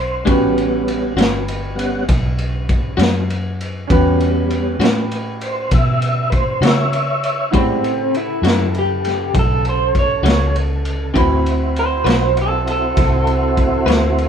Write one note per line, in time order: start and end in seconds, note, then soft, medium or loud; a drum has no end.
0.00 0.24 B1 medium
0.00 0.22 C4 medium
0.00 0.22 E4 soft
0.00 0.23 F#4 soft
0.00 0.24 B4 medium
0.00 0.24 C5 loud
0.25 1.15 A1 medium
0.25 0.44 A2 medium
0.25 0.45 G3 medium
0.25 1.13 G3 medium
0.25 1.13 B3 soft
0.25 3.85 C#4 medium
0.25 1.13 C#4 soft
0.25 0.45 C#4 medium
0.25 3.86 F#4 medium
0.25 0.45 F#4 medium
0.25 3.87 G4 medium
0.25 3.87 B4 medium
0.25 kick loud
0.25 ride medium
0.58 ride medium
0.88 ride medium
1.16 2.05 G1 loud
1.16 1.36 A2 medium
1.16 1.36 G3 medium
1.16 1.36 C#4 medium
1.16 1.35 F#4 medium
1.16 ride medium
1.21 snare loud
1.48 ride medium
1.75 2.04 G3 soft
1.75 2.05 B3 soft
1.75 2.05 C#4 soft
1.75 2.04 F#5 medium
1.75 ride medium
2.08 2.96 B1 medium
2.08 kick loud
2.08 snare soft
2.08 ride medium
2.39 ride medium
2.69 kick medium
2.69 ride medium
2.97 3.87 F#2 medium
2.97 3.17 A2 medium
2.97 3.17 G3 medium
2.97 3.17 C#4 medium
2.97 3.16 F#4 medium
2.97 ride medium
3.02 snare loud
3.30 ride medium
3.61 ride medium
3.87 4.78 E2 medium
3.87 4.77 G3 soft
3.87 4.77 B3 soft
3.87 7.48 C#4 medium
3.87 4.77 C#4 soft
3.87 7.48 F#4 medium
3.87 7.49 G4 medium
3.87 kick loud
3.87 ride medium
3.91 7.50 B4 medium
4.20 ride medium
4.50 ride medium
4.79 5.68 A2 loud
4.79 4.99 A2 medium
4.79 4.99 G3 medium
4.79 4.99 C#4 medium
4.79 4.99 F#4 medium
4.79 ride medium
4.84 snare loud
5.11 ride medium
5.41 5.72 C5 loud
5.41 ride medium
5.71 6.60 B2 medium
5.71 6.31 E5 loud
5.71 kick loud
5.71 ride medium
6.02 ride medium
6.30 6.33 B4 medium
6.30 6.62 C5 loud
6.30 kick medium
6.30 ride medium
6.61 6.81 A2 medium
6.61 7.50 C#3 loud
6.61 6.81 G3 medium
6.61 6.80 C#4 medium
6.61 6.80 F#4 medium
6.61 7.50 C#5 medium
6.61 7.51 E5 loud
6.61 ride medium
6.66 snare loud
6.93 ride medium
7.24 ride medium
7.51 7.71 A2 medium
7.51 8.41 A2 medium
7.51 7.72 G3 medium
7.51 7.84 G#3 medium
7.51 7.72 C#4 medium
7.51 7.84 D4 medium
7.51 11.11 E4 soft
7.51 11.12 G4 soft
7.51 7.84 C5 medium
7.51 11.11 F#5 soft
7.51 11.12 B5 medium
7.51 kick loud
7.51 ride medium
7.55 8.14 C4 medium
7.55 7.72 F#4 medium
7.55 7.84 G4 medium
7.84 11.13 C#3 medium
7.84 11.13 A4 medium
7.84 ride medium
8.14 8.74 E4 medium
8.14 ride medium
8.42 9.31 F#2 medium
8.42 8.63 A2 medium
8.42 8.63 G3 medium
8.42 8.62 C#4 medium
8.42 8.62 F#4 medium
8.42 ride medium
8.47 snare loud
8.74 9.35 G4 medium
8.74 ride medium
9.05 snare soft
9.05 ride medium
9.34 10.22 B1 medium
9.34 kick loud
9.34 ride medium
9.39 9.66 A4 medium
9.65 ride medium
9.69 9.96 C5 medium
9.95 10.56 C#5 medium
9.95 kick medium
9.95 ride medium
10.23 11.12 C#2 medium
10.23 10.43 A2 soft
10.23 10.43 G3 medium
10.23 10.43 C#4 medium
10.23 10.42 F#4 medium
10.23 ride medium
10.28 snare loud
10.56 ride medium
10.85 ride medium
11.14 12.03 D2 medium
11.14 11.33 D3 medium
11.14 14.29 C4 medium
11.14 11.34 C4 medium
11.14 14.29 E4 medium
11.14 14.29 F#4 medium
11.14 11.34 F#4 medium
11.14 14.29 F#4 medium
11.14 11.34 B4 medium
11.14 14.29 C5 medium
11.14 14.29 B5 medium
11.14 kick loud
11.14 ride medium
11.46 ride medium
11.76 12.07 C5 medium
11.76 ride medium
12.04 12.94 B1 medium
12.04 12.25 D3 medium
12.04 12.24 C4 medium
12.04 12.24 F#4 medium
12.04 12.24 B4 medium
12.04 ride medium
12.09 12.38 C5 medium
12.09 snare loud
12.37 ride medium
12.41 12.69 A4 medium
12.67 14.29 A4 loud
12.67 ride medium
12.97 13.85 C2 medium
12.97 kick loud
12.97 snare soft
12.97 ride medium
13.27 ride medium
13.57 kick medium
13.57 ride medium
13.86 14.29 D2 medium
13.86 14.06 D3 medium
13.86 14.06 C4 medium
13.86 14.06 F#4 medium
13.86 14.05 B4 medium
13.86 ride medium
13.90 snare loud
14.18 ride medium